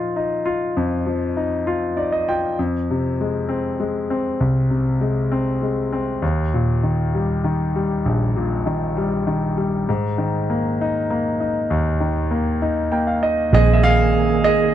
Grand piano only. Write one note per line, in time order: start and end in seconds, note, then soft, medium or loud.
0.00 0.71 A#2 soft
0.00 0.41 F3 soft
0.00 0.15 D#4 soft
0.00 0.44 F4 soft
0.16 1.33 D#4 soft
0.45 1.63 F4 soft
0.77 2.54 F2 soft
1.06 2.24 F3 soft
1.37 1.95 D#4 soft
1.67 2.27 F4 soft
1.97 2.56 D#4 soft
1.97 2.11 D5 soft
2.12 2.26 D#5 soft
2.29 2.57 F4 soft
2.29 2.56 G5 medium
2.59 4.37 F2 soft
2.90 4.07 C3 soft
3.21 3.78 G#3 soft
3.49 4.09 C4 soft
3.80 4.98 G#3 soft
4.10 5.28 C4 soft
4.40 6.19 C2 soft
4.70 5.88 C3 soft
5.01 5.61 G#3 soft
5.32 5.91 C4 soft
5.62 6.21 G#3 soft
5.92 6.22 C4 soft
6.22 8.01 D#2 soft
6.54 7.72 A#2 soft
6.83 7.43 D#3 soft
7.15 7.74 G3 soft
7.44 8.62 D#3 soft
7.76 8.93 G3 soft
8.06 9.84 A#1 soft
8.36 9.54 A#2 soft
8.66 9.26 D#3 soft
8.97 9.56 G3 soft
9.27 9.86 D#3 soft
9.57 9.87 G3 soft
9.89 11.67 G#2 soft
10.18 11.36 D#3 soft
10.50 11.09 A#3 soft
10.81 11.39 D#4 soft
11.10 12.28 A#3 soft
11.40 12.58 D#4 soft
11.70 13.49 D#2 soft
12.00 13.18 D#3 soft
12.31 12.91 A#3 soft
12.62 13.22 D#4 soft
12.92 13.51 A#3 soft
12.92 13.06 G5 soft
13.07 13.21 F5 soft
13.23 13.52 D#4 soft
13.23 13.51 D#5 medium
13.52 14.40 G#3 medium
13.52 14.40 C4 soft
13.52 14.40 D#4 medium
13.52 13.75 G#4 medium
13.52 13.78 D#5 medium
13.73 13.82 E5 medium
13.83 14.40 G#4 medium
13.83 14.46 F5 loud
14.44 14.74 G#4 medium
14.44 14.74 D#5 medium